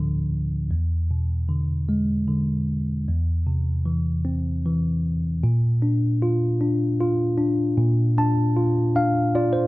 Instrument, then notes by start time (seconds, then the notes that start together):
tine electric piano
Already playing: D2 A2 D3 F3
0.71 E2
1.11 B2
1.49 D3
1.89 G#3
2.28 D3
3.08 E2
3.47 C3
3.86 E3
4.25 C4
4.65 E3
5.43 A#2
5.82 D4
6.22 F4
6.61 D4
7.01 F4
7.38 D4
7.78 A#2
8.18 D4 A5
8.56 F4
8.95 D4 F5
9.35 F4 D5
9.53 C5